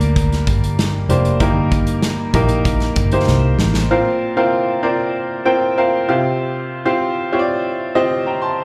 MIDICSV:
0, 0, Header, 1, 4, 480
1, 0, Start_track
1, 0, Key_signature, -2, "major"
1, 0, Tempo, 624350
1, 1078, Time_signature, 4, 2, 24, 8
1, 6642, End_track
2, 0, Start_track
2, 0, Title_t, "Upright piano"
2, 0, Program_c, 0, 0
2, 0, Control_c, 0, 64, 127
2, 0, Note_on_c, 0, 43, 76
2, 0, Note_on_c, 0, 58, 94
2, 0, Note_on_c, 0, 62, 83
2, 0, Note_on_c, 0, 67, 78
2, 0, Note_on_c, 0, 70, 97
2, 283, Note_off_c, 0, 70, 0
2, 285, Note_off_c, 0, 58, 0
2, 285, Note_off_c, 0, 67, 0
2, 286, Note_off_c, 0, 62, 0
2, 841, Note_on_c, 0, 67, 69
2, 841, Note_on_c, 0, 72, 84
2, 844, Note_on_c, 0, 58, 78
2, 844, Note_on_c, 0, 62, 73
2, 1031, Note_off_c, 0, 67, 0
2, 1031, Note_off_c, 0, 72, 0
2, 1033, Note_off_c, 0, 58, 0
2, 1033, Note_off_c, 0, 62, 0
2, 1083, Note_on_c, 0, 58, 83
2, 1083, Note_on_c, 0, 63, 77
2, 1083, Note_on_c, 0, 67, 80
2, 1083, Note_on_c, 0, 70, 93
2, 1084, Note_off_c, 0, 43, 0
2, 1084, Note_on_c, 0, 43, 73
2, 1087, Control_c, 0, 64, 0
2, 1223, Control_c, 0, 64, 127
2, 1656, Note_off_c, 0, 58, 0
2, 1656, Note_off_c, 0, 63, 0
2, 1656, Note_off_c, 0, 67, 0
2, 1656, Note_off_c, 0, 70, 0
2, 1770, Note_off_c, 0, 43, 0
2, 1802, Note_on_c, 0, 67, 75
2, 1803, Note_on_c, 0, 58, 86
2, 1803, Note_on_c, 0, 70, 97
2, 1805, Note_on_c, 0, 63, 81
2, 2279, Note_off_c, 0, 67, 0
2, 2280, Note_off_c, 0, 58, 0
2, 2280, Note_off_c, 0, 70, 0
2, 2281, Note_off_c, 0, 63, 0
2, 2403, Note_on_c, 0, 58, 79
2, 2404, Note_on_c, 0, 63, 68
2, 2404, Note_on_c, 0, 67, 74
2, 2404, Note_on_c, 0, 72, 91
2, 2880, Note_off_c, 0, 58, 0
2, 2880, Note_off_c, 0, 63, 0
2, 2880, Note_off_c, 0, 72, 0
2, 2881, Note_off_c, 0, 67, 0
2, 3003, Note_on_c, 0, 65, 77
2, 3005, Note_on_c, 0, 46, 76
2, 3005, Note_on_c, 0, 72, 81
2, 3005, Note_on_c, 0, 77, 99
2, 3006, Control_c, 0, 64, 0
2, 3006, Note_on_c, 0, 60, 85
2, 3006, Note_on_c, 0, 70, 82
2, 3136, Control_c, 0, 64, 127
2, 3288, Note_off_c, 0, 65, 0
2, 3289, Note_off_c, 0, 70, 0
2, 3289, Note_off_c, 0, 72, 0
2, 3289, Note_off_c, 0, 77, 0
2, 3290, Note_off_c, 0, 60, 0
2, 3358, Note_on_c, 0, 60, 89
2, 3358, Note_on_c, 0, 65, 84
2, 3359, Note_on_c, 0, 70, 83
2, 3359, Note_on_c, 0, 72, 81
2, 3359, Note_on_c, 0, 77, 102
2, 3645, Note_off_c, 0, 60, 0
2, 3646, Note_off_c, 0, 65, 0
2, 3646, Note_off_c, 0, 70, 0
2, 3646, Note_off_c, 0, 72, 0
2, 3646, Note_off_c, 0, 77, 0
2, 3691, Note_off_c, 0, 46, 0
2, 3712, Note_on_c, 0, 60, 87
2, 3712, Note_on_c, 0, 72, 84
2, 3713, Note_on_c, 0, 65, 78
2, 3713, Note_on_c, 0, 70, 82
2, 3714, Note_on_c, 0, 74, 98
2, 4098, Note_off_c, 0, 60, 0
2, 4098, Note_off_c, 0, 72, 0
2, 4099, Note_off_c, 0, 65, 0
2, 4099, Note_off_c, 0, 70, 0
2, 4099, Note_off_c, 0, 74, 0
2, 4192, Note_on_c, 0, 72, 81
2, 4193, Note_on_c, 0, 65, 80
2, 4194, Note_on_c, 0, 60, 87
2, 4195, Note_on_c, 0, 79, 96
2, 4196, Note_on_c, 0, 70, 80
2, 4387, Note_off_c, 0, 65, 0
2, 4387, Note_off_c, 0, 72, 0
2, 4388, Note_off_c, 0, 60, 0
2, 4388, Note_off_c, 0, 70, 0
2, 4388, Note_off_c, 0, 79, 0
2, 4439, Note_on_c, 0, 60, 84
2, 4441, Note_on_c, 0, 70, 79
2, 4442, Note_on_c, 0, 65, 77
2, 4442, Note_on_c, 0, 72, 80
2, 4443, Note_on_c, 0, 77, 95
2, 4666, Note_off_c, 0, 60, 0
2, 4666, Note_off_c, 0, 65, 0
2, 4668, Note_off_c, 0, 77, 0
2, 4669, Note_off_c, 0, 72, 0
2, 4677, Note_on_c, 0, 60, 88
2, 4677, Note_on_c, 0, 65, 82
2, 4678, Note_on_c, 0, 48, 77
2, 4679, Note_off_c, 0, 70, 0
2, 4679, Note_on_c, 0, 67, 82
2, 4680, Note_on_c, 0, 77, 96
2, 4681, Note_on_c, 0, 72, 85
2, 4689, Control_c, 0, 64, 0
2, 4802, Control_c, 0, 64, 127
2, 5157, Note_off_c, 0, 60, 0
2, 5157, Note_off_c, 0, 65, 0
2, 5158, Note_off_c, 0, 67, 0
2, 5158, Note_off_c, 0, 77, 0
2, 5159, Note_off_c, 0, 72, 0
2, 5268, Note_on_c, 0, 65, 79
2, 5270, Note_on_c, 0, 60, 90
2, 5270, Note_on_c, 0, 72, 88
2, 5271, Note_on_c, 0, 67, 81
2, 5271, Note_on_c, 0, 77, 99
2, 5366, Note_off_c, 0, 48, 0
2, 5560, Note_off_c, 0, 65, 0
2, 5561, Note_off_c, 0, 60, 0
2, 5561, Note_off_c, 0, 67, 0
2, 5561, Note_off_c, 0, 72, 0
2, 5562, Note_off_c, 0, 77, 0
2, 5631, Note_on_c, 0, 73, 78
2, 5632, Note_on_c, 0, 67, 80
2, 5632, Note_on_c, 0, 72, 82
2, 5633, Note_on_c, 0, 65, 82
2, 5635, Note_on_c, 0, 60, 88
2, 5684, Note_off_c, 0, 73, 0
2, 5684, Note_on_c, 0, 74, 100
2, 6018, Note_off_c, 0, 65, 0
2, 6018, Note_off_c, 0, 67, 0
2, 6018, Note_off_c, 0, 72, 0
2, 6019, Note_off_c, 0, 60, 0
2, 6044, Note_off_c, 0, 74, 0
2, 6114, Note_on_c, 0, 60, 93
2, 6114, Note_on_c, 0, 72, 84
2, 6114, Note_on_c, 0, 75, 96
2, 6115, Note_on_c, 0, 65, 81
2, 6115, Note_on_c, 0, 67, 84
2, 6307, Note_off_c, 0, 60, 0
2, 6307, Note_off_c, 0, 65, 0
2, 6307, Note_off_c, 0, 67, 0
2, 6307, Note_off_c, 0, 72, 0
2, 6307, Note_off_c, 0, 75, 0
2, 6352, Note_on_c, 0, 82, 65
2, 6357, Note_on_c, 0, 79, 58
2, 6468, Note_off_c, 0, 82, 0
2, 6470, Note_off_c, 0, 79, 0
2, 6471, Note_on_c, 0, 84, 77
2, 6477, Note_on_c, 0, 81, 68
2, 6642, Note_off_c, 0, 81, 0
2, 6642, Note_off_c, 0, 84, 0
2, 6642, End_track
3, 0, Start_track
3, 0, Title_t, "Picked electric bass"
3, 0, Program_c, 1, 34
3, 0, Note_on_c, 1, 38, 83
3, 327, Note_off_c, 1, 38, 0
3, 361, Note_on_c, 1, 31, 88
3, 809, Note_off_c, 1, 31, 0
3, 838, Note_on_c, 1, 29, 88
3, 1061, Note_off_c, 1, 29, 0
3, 1078, Note_on_c, 1, 31, 84
3, 1767, Note_off_c, 1, 31, 0
3, 1795, Note_on_c, 1, 34, 83
3, 2246, Note_off_c, 1, 34, 0
3, 2276, Note_on_c, 1, 31, 96
3, 2500, Note_off_c, 1, 31, 0
3, 2519, Note_on_c, 1, 36, 102
3, 2741, Note_off_c, 1, 36, 0
3, 2756, Note_on_c, 1, 33, 86
3, 2980, Note_off_c, 1, 33, 0
3, 6642, End_track
4, 0, Start_track
4, 0, Title_t, "Drums"
4, 6, Note_on_c, 9, 42, 53
4, 83, Note_off_c, 9, 42, 0
4, 125, Note_on_c, 9, 36, 90
4, 130, Note_on_c, 9, 42, 85
4, 201, Note_off_c, 9, 36, 0
4, 207, Note_off_c, 9, 42, 0
4, 249, Note_on_c, 9, 42, 37
4, 252, Note_on_c, 9, 38, 34
4, 326, Note_off_c, 9, 42, 0
4, 329, Note_off_c, 9, 38, 0
4, 363, Note_on_c, 9, 36, 91
4, 363, Note_on_c, 9, 42, 72
4, 440, Note_off_c, 9, 36, 0
4, 440, Note_off_c, 9, 42, 0
4, 490, Note_on_c, 9, 42, 49
4, 567, Note_off_c, 9, 42, 0
4, 606, Note_on_c, 9, 42, 77
4, 608, Note_on_c, 9, 38, 104
4, 683, Note_off_c, 9, 42, 0
4, 685, Note_off_c, 9, 38, 0
4, 844, Note_on_c, 9, 42, 69
4, 920, Note_off_c, 9, 42, 0
4, 961, Note_on_c, 9, 42, 48
4, 1038, Note_off_c, 9, 42, 0
4, 1078, Note_on_c, 9, 42, 81
4, 1080, Note_on_c, 9, 36, 91
4, 1155, Note_off_c, 9, 42, 0
4, 1156, Note_off_c, 9, 36, 0
4, 1319, Note_on_c, 9, 42, 77
4, 1320, Note_on_c, 9, 36, 90
4, 1396, Note_off_c, 9, 42, 0
4, 1397, Note_off_c, 9, 36, 0
4, 1436, Note_on_c, 9, 42, 54
4, 1513, Note_off_c, 9, 42, 0
4, 1557, Note_on_c, 9, 38, 100
4, 1558, Note_on_c, 9, 42, 78
4, 1633, Note_off_c, 9, 38, 0
4, 1634, Note_off_c, 9, 42, 0
4, 1798, Note_on_c, 9, 36, 86
4, 1798, Note_on_c, 9, 42, 68
4, 1875, Note_off_c, 9, 36, 0
4, 1875, Note_off_c, 9, 42, 0
4, 1911, Note_on_c, 9, 42, 50
4, 1988, Note_off_c, 9, 42, 0
4, 2040, Note_on_c, 9, 36, 92
4, 2041, Note_on_c, 9, 42, 91
4, 2117, Note_off_c, 9, 36, 0
4, 2118, Note_off_c, 9, 42, 0
4, 2155, Note_on_c, 9, 42, 37
4, 2158, Note_on_c, 9, 38, 32
4, 2232, Note_off_c, 9, 42, 0
4, 2235, Note_off_c, 9, 38, 0
4, 2274, Note_on_c, 9, 42, 70
4, 2278, Note_on_c, 9, 36, 90
4, 2351, Note_off_c, 9, 42, 0
4, 2355, Note_off_c, 9, 36, 0
4, 2395, Note_on_c, 9, 42, 49
4, 2472, Note_off_c, 9, 42, 0
4, 2517, Note_on_c, 9, 38, 57
4, 2594, Note_off_c, 9, 38, 0
4, 2757, Note_on_c, 9, 38, 89
4, 2834, Note_off_c, 9, 38, 0
4, 2876, Note_on_c, 9, 38, 80
4, 2952, Note_off_c, 9, 38, 0
4, 6642, End_track
0, 0, End_of_file